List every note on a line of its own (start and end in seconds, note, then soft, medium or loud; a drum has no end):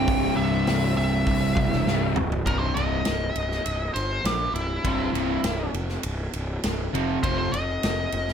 0.00 1.84 C2 loud
0.00 1.85 G2 loud
0.00 1.86 C3 loud
0.00 0.34 C4 medium
0.00 0.33 G5 loud
0.07 0.36 C1 loud
0.07 kick loud
0.07 open hi-hat medium
0.36 0.66 C1 medium
0.36 0.93 C4 medium
0.36 0.93 E5 loud
0.67 0.96 C1 medium
0.67 snare loud
0.67 open hi-hat medium
0.96 1.26 C1 loud
0.96 2.12 C4 medium
0.96 2.12 E5 medium
1.27 1.56 C1 medium
1.27 kick loud
1.27 open hi-hat medium
1.57 1.85 E1 medium
1.57 kick loud
1.73 snare soft
1.86 2.16 C1 loud
1.86 2.14 C2 medium
1.86 2.15 G2 medium
1.86 2.16 C3 medium
1.86 snare medium
2.16 2.45 C1 loud
2.16 mid tom loud
2.32 floor tom loud
2.46 2.69 C1 medium
2.46 2.70 C2 medium
2.46 2.71 G2 medium
2.46 2.71 C3 medium
2.46 2.58 A#4 medium
2.46 kick loud
2.46 ride medium
2.59 2.75 C5 medium
2.74 3.00 C1 medium
2.74 3.00 C2 medium
2.74 3.00 G2 medium
2.74 3.00 C3 loud
2.74 3.91 D#5 loud
2.74 ride medium
3.05 3.30 C1 medium
3.05 snare loud
3.05 ride medium
3.36 3.59 C1 medium
3.36 ride medium
3.51 snare soft
3.66 3.89 C1 medium
3.66 ride medium
3.94 4.18 G1 medium
3.94 4.24 C5 medium
3.94 ride medium
4.24 4.48 A#1 medium
4.24 4.54 G4 medium
4.24 snare loud
4.24 ride medium
4.54 4.77 C1 medium
4.54 5.71 E4 medium
4.54 ride medium
4.84 5.08 C1 medium
4.84 5.09 C2 medium
4.84 5.09 G2 loud
4.84 5.09 C3 loud
4.84 kick loud
4.84 ride medium
5.13 5.37 C1 medium
5.13 5.38 C2 loud
5.13 5.38 G2 medium
5.13 5.38 C3 loud
5.13 ride medium
5.43 5.67 C1 medium
5.43 snare loud
5.43 ride loud
5.73 5.97 F1 medium
5.73 ride medium
5.89 snare soft
6.03 6.27 C1 medium
6.03 ride loud
6.33 6.57 C1 medium
6.33 ride medium
6.63 6.87 C1 medium
6.63 snare loud
6.63 ride loud
6.93 7.17 F1 medium
6.93 7.18 F2 medium
6.93 7.18 C3 loud
6.93 7.18 F3 loud
6.93 ride medium
7.23 7.47 F1 medium
7.23 7.47 F2 medium
7.23 7.48 C3 loud
7.23 7.48 F3 loud
7.23 7.37 C5 medium
7.23 kick loud
7.23 ride medium
7.38 7.53 C5 medium
7.52 7.76 F1 medium
7.52 8.33 D#5 loud
7.52 ride medium
7.83 8.07 F1 medium
7.83 snare loud
7.83 ride medium
8.12 8.33 F1 medium
8.12 ride medium
8.28 snare soft